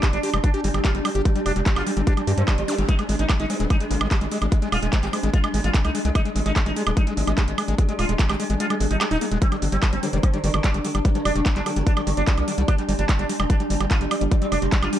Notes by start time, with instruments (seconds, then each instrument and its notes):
Already playing: synth drone G3 D4
0.03 acid bass G3, sitar G3, kick, clap, closed hi-hat, high woodblock
0.13 analog synth bass G1, acid bass G3, sitar D4, closed hi-hat
0.23 sitar G3, acid bass G4, open hi-hat
0.34 analog synth bass F1, acid bass G3, sitar G3, closed hi-hat, high woodblock
0.44 acid bass G3, sitar D4, kick, closed hi-hat
0.54 sitar G3, acid bass G4, closed hi-hat
0.64 analog synth bass G1, acid bass G3, sitar G3, open hi-hat
0.74 analog synth bass G1, acid bass G3, sitar G3, closed hi-hat, high woodblock
0.85 sitar F4, acid bass G4, kick, clap, closed hi-hat
0.95 analog synth bass G1, acid bass G3, sitar G3, closed hi-hat
1.05 acid bass G3, sitar G3, open hi-hat, high woodblock
1.15 analog synth bass G1, acid bass G4, closed hi-hat
1.25 acid bass G3, sitar G3, kick, closed hi-hat
1.36 acid bass G3, sitar G3, closed hi-hat
1.46 analog synth bass F1, sitar D4, acid bass G4, open hi-hat, high woodblock
1.56 analog synth bass F1, sitar G3, acid bass G3, closed hi-hat
1.66 acid bass G3, sitar G3, kick, clap, closed hi-hat
1.76 analog synth bass G1, sitar F4, acid bass G4, clap, closed hi-hat, high woodblock
1.87 sitar G3, acid bass G3, open hi-hat
1.97 analog synth bass G1, sitar G3, acid bass G3, closed hi-hat
2.07 sitar D4, acid bass G4, kick, closed hi-hat
2.17 sitar G3, acid bass G3, closed hi-hat, high woodblock
2.27 analog synth bass G2, sitar G3, acid bass G4, open hi-hat
2.38 analog synth bass G2, acid bass G3, sitar C4, closed hi-hat
2.48 sitar G3, acid bass G3, kick, clap, closed hi-hat, high woodblock
2.58 analog synth bass G1, sitar G3, acid bass G3, closed hi-hat
2.68 sitar G3, acid bass D4, open hi-hat, zap
2.78 analog synth bass G1, acid bass G3, sitar G3, closed hi-hat
2.89 acid bass G#3, sitar D#4, kick, closed hi-hat
2.99 acid bass G#3, sitar G#3, closed hi-hat, high woodblock
3.09 analog synth bass G#1, sitar G#3, acid bass G#3, open hi-hat
3.19 analog synth bass G#1, acid bass G#3, sitar D#4, closed hi-hat
3.29 sitar G#3, acid bass G#3, kick, clap, closed hi-hat, high woodblock
3.40 analog synth bass G#1, acid bass G#3, sitar D#4, closed hi-hat
3.50 sitar G#3, acid bass G#3, wobble bass C4, open hi-hat
3.60 analog synth bass D#1, sitar G#3, acid bass G#3, wobble bass C4, closed hi-hat
3.70 acid bass G#3, sitar D#4, kick, closed hi-hat, high woodblock
3.80 sitar G#3, acid bass G#3, closed hi-hat
3.91 analog synth bass G#1, sitar G#3, acid bass G#3, wobble bass A#3, open hi-hat
4.01 analog synth bass G#1, sitar G#3, acid bass G#3, wobble bass A#3, closed hi-hat, high woodblock
4.11 acid bass G#3, sitar G4, kick, clap, closed hi-hat
4.21 analog synth bass G#1, sitar G#3, acid bass G#3, closed hi-hat
4.31 acid bass G#3, sitar G#3, open hi-hat
4.42 analog synth bass G#1, acid bass G#3, closed hi-hat, high woodblock
4.52 acid bass G#3, sitar G#3, kick, closed hi-hat
4.62 acid bass G#3, sitar G#3, closed hi-hat
4.72 analog synth bass D#1, acid bass G#3, sitar F4, open hi-hat, high woodblock
4.83 analog synth bass D#1, sitar G#3, acid bass G#3, closed hi-hat
4.93 sitar G#3, acid bass G#3, wobble bass C4, kick, clap, closed hi-hat
5.03 analog synth bass G#1, acid bass G#3, sitar G4, clap, closed hi-hat
5.13 sitar G#3, acid bass G#3, open hi-hat, high woodblock
5.23 analog synth bass G#1, acid bass G#3, sitar G#3, closed hi-hat
5.34 acid bass G#3, sitar F4, kick, closed hi-hat
5.44 acid bass G#3, sitar G#3, closed hi-hat, high woodblock
5.54 analog synth bass G#1, sitar G#3, acid bass G#3, open hi-hat
5.64 analog synth bass G#1, acid bass G#3, sitar F4, closed hi-hat
5.74 acid bass G#3, sitar G#3, kick, clap, closed hi-hat
5.85 analog synth bass C2, acid bass G#3, sitar D#4, closed hi-hat, high woodblock
5.95 acid bass G#3, sitar G#3, open hi-hat
6.05 analog synth bass C2, acid bass G#3, sitar G#3, closed hi-hat
6.15 acid bass G#3, sitar D#4, kick, closed hi-hat, high woodblock
6.25 acid bass G#3, sitar G#3, closed hi-hat
6.36 analog synth bass G#1, acid bass G#3, sitar G#3, open hi-hat
6.46 analog synth bass G#1, acid bass G#3, sitar D#4, closed hi-hat
6.56 acid bass G#3, sitar G#3, kick, clap, closed hi-hat, high woodblock
6.66 analog synth bass G#1, acid bass G#3, sitar D#4, closed hi-hat
6.76 sitar G#3, acid bass G#3, open hi-hat
6.87 analog synth bass D#1, sitar G#3, acid bass G#3, closed hi-hat, high woodblock
6.97 acid bass G#3, sitar D#4, kick, closed hi-hat
7.07 sitar G#3, acid bass G#3, closed hi-hat
7.17 analog synth bass G#1, sitar G#3, acid bass G#3, open hi-hat
7.27 analog synth bass G#1, acid bass G#3, sitar G#3, closed hi-hat, high woodblock
7.38 acid bass G#3, sitar G4, kick, clap, closed hi-hat
7.48 analog synth bass G#1, acid bass G#3, sitar G#3, closed hi-hat
7.58 sitar G#3, acid bass G#3, open hi-hat, high woodblock
7.68 analog synth bass G#1, acid bass G#3, closed hi-hat
7.78 sitar G#3, acid bass G#3, kick, closed hi-hat
7.89 acid bass G#3, sitar G#3, closed hi-hat
7.99 analog synth bass D#1, acid bass G#3, sitar F4, open hi-hat, high woodblock
8.09 analog synth bass D#1, sitar G#3, acid bass G#3, closed hi-hat
8.19 acid bass G#3, sitar G#3, kick, clap, closed hi-hat
8.29 analog synth bass G#1, acid bass G#3, sitar G4, clap, closed hi-hat, high woodblock
8.40 acid bass G#3, sitar G#3, open hi-hat
8.50 analog synth bass G#1, sitar G#3, acid bass G#3, closed hi-hat
8.60 acid bass G#3, sitar F4, closed hi-hat
8.70 sitar G#3, acid bass G#3, closed hi-hat, high woodblock
8.80 analog synth bass G#1, sitar G#3, acid bass G#3, open hi-hat
8.91 analog synth bass G#1, acid bass G#3, sitar D#4, closed hi-hat
9.01 sitar G#3, acid bass G#3, clap, closed hi-hat, high woodblock
9.11 analog synth bass D#1, sitar D#4, acid bass D#4, closed hi-hat
9.21 sitar G#3, acid bass A#3, open hi-hat
9.31 analog synth bass D#1, sitar G#3, acid bass G#3, closed hi-hat
9.42 synth drone G3 D4, acid bass G3, sitar C4, kick, closed hi-hat
9.52 sitar D3, acid bass G3, closed hi-hat, high woodblock
9.62 analog synth bass G1, sitar D3, acid bass G3, open hi-hat
9.72 analog synth bass G1, acid bass G3, sitar C4, closed hi-hat
9.82 sitar D3, acid bass G3, kick, clap, closed hi-hat, high woodblock
9.93 analog synth bass G1, acid bass G3, sitar C4, closed hi-hat
10.03 sitar D3, acid bass G3, wobble bass C4, open hi-hat
10.13 analog synth bass F1, sitar D3, acid bass G3, wobble bass C4, closed hi-hat
10.23 acid bass G3, sitar C4, kick, closed hi-hat, high woodblock
10.34 sitar D3, acid bass G3, closed hi-hat
10.44 analog synth bass G1, sitar D3, acid bass G3, wobble bass A#3, open hi-hat
10.54 analog synth bass G1, sitar D3, acid bass G3, wobble bass A#3, closed hi-hat, high woodblock
10.64 acid bass G3, sitar D4, kick, clap, closed hi-hat
10.74 analog synth bass G1, sitar D3, acid bass G3, closed hi-hat
10.85 sitar D3, acid bass G3, open hi-hat
10.95 analog synth bass G1, acid bass G3, closed hi-hat, high woodblock
11.05 sitar D3, acid bass G3, wobble bass A#3, kick, closed hi-hat
11.15 sitar D3, acid bass G3, wobble bass A#3, closed hi-hat
11.25 analog synth bass F1, acid bass G3, sitar D4, open hi-hat, high woodblock
11.36 analog synth bass F1, sitar D3, acid bass G3, closed hi-hat
11.46 sitar D3, acid bass G3, kick, clap, closed hi-hat
11.56 analog synth bass G1, acid bass G3, sitar D4, clap, closed hi-hat
11.66 sitar D3, wobble bass G3, acid bass G3, open hi-hat, high woodblock
11.76 analog synth bass G1, sitar D3, wobble bass G3, acid bass G3, closed hi-hat
11.87 acid bass G3, sitar D4, kick, closed hi-hat
11.97 sitar D3, acid bass G3, closed hi-hat, high woodblock
12.07 analog synth bass G1, sitar D3, acid bass G3, open hi-hat
12.17 analog synth bass G1, acid bass G3, sitar D4, closed hi-hat
12.27 sitar D3, acid bass G3, kick, clap, closed hi-hat
12.38 analog synth bass C2, acid bass G3, sitar A#3, closed hi-hat, high woodblock
12.48 sitar D3, acid bass G3, open hi-hat
12.58 analog synth bass C2, sitar D3, acid bass G3, closed hi-hat
12.68 acid bass G3, sitar D4, kick, closed hi-hat, high woodblock
12.78 acid bass G3, sitar G3, closed hi-hat
12.89 analog synth bass G1, acid bass G3, sitar G3, open hi-hat
12.99 analog synth bass G1, acid bass G3, sitar D4, closed hi-hat
13.09 sitar G3, acid bass G3, kick, clap, closed hi-hat, high woodblock
13.19 analog synth bass G1, acid bass G3, sitar D4, closed hi-hat
13.29 sitar G3, acid bass G3, open hi-hat
13.40 analog synth bass F1, sitar G3, acid bass G3, closed hi-hat, high woodblock
13.50 acid bass G3, sitar D4, kick, closed hi-hat
13.60 sitar G3, acid bass G3, closed hi-hat
13.70 analog synth bass G1, sitar G3, acid bass G3, open hi-hat
13.80 analog synth bass G1, sitar G3, acid bass G3, closed hi-hat, high woodblock
13.91 acid bass G3, sitar F4, kick, clap, closed hi-hat
14.01 analog synth bass G1, sitar G3, acid bass G3, closed hi-hat
14.11 sitar G3, acid bass G3, open hi-hat, high woodblock
14.21 analog synth bass G1, acid bass G3, closed hi-hat
14.31 sitar G3, acid bass G3, kick, closed hi-hat
14.42 acid bass G3, sitar G3, closed hi-hat
14.52 analog synth bass F1, acid bass G3, sitar D4, open hi-hat, high woodblock
14.62 analog synth bass F1, acid bass G3, sitar G3, closed hi-hat
14.72 acid bass G3, sitar G3, kick, clap, closed hi-hat
14.83 analog synth bass G1, acid bass G3, sitar F4, clap, closed hi-hat, high woodblock
14.93 acid bass G3, sitar G3, open hi-hat